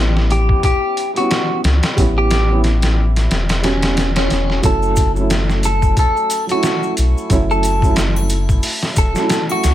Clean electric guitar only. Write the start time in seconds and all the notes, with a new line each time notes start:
0.32 G4
0.65 G4
1.17 F#4
2.18 G4
3.65 C#4
4.17 C#4
4.65 A4
5.65 A4
5.99 A4
6.52 F#4
7.51 A4
8.98 A4
9.52 F#4